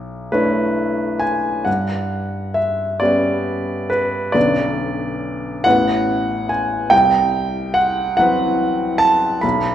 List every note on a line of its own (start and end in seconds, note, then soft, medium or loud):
0.00 0.29 B1 soft
0.32 1.63 A3 soft
0.32 1.64 D4 soft
0.32 1.64 E4 soft
0.32 1.22 B4 medium
0.32 1.64 C#5 soft
1.20 1.66 G#5 medium
1.65 2.98 G2 soft
1.65 2.56 F#5 medium
2.54 3.01 E5 medium
3.00 4.31 G3 soft
3.00 4.31 B3 soft
3.00 4.32 C#4 soft
3.00 3.88 B4 soft
3.00 3.90 D5 medium
3.90 4.35 B4 medium
4.32 5.61 B1 soft
4.32 5.61 D3 soft
4.32 5.61 B3 soft
4.32 5.62 C#4 soft
4.32 5.62 B4 soft
4.32 5.64 D5 medium
5.64 6.88 A1 soft
5.64 6.88 E3 soft
5.64 6.88 B3 soft
5.64 6.88 C#4 soft
5.64 6.89 B4 soft
5.64 6.49 F#5 medium
6.49 6.92 G#5 medium
6.90 8.14 C2 soft
6.90 7.76 G5 medium
7.74 8.15 F#5 medium
8.17 9.39 E3 soft
8.17 9.40 F#3 soft
8.17 9.40 C4 soft
8.17 9.40 B4 soft
8.17 9.00 F#5 medium
8.98 9.42 A5 medium
9.41 9.75 B1 soft
9.41 9.75 B5 medium